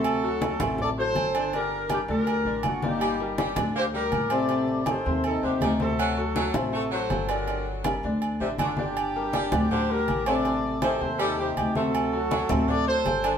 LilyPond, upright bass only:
\new Staff \with { instrumentName = "Upright bass" } { \clef bass \time 4/4 \key g \minor \tempo 4 = 162 d,4. a,,4. g,,4~ | g,,4. d,4 a,,8 g,,4~ | g,,4. d,4. a,,4~ | a,,4. ees,4 ees,8 d,4~ |
d,4. a,,4. g,,4~ | g,,4. d,4 a,,8 g,,4~ | g,,4. d,4. a,,4~ | a,,4. ees,4. d,4~ |
d,4. d,4. g,,4 | }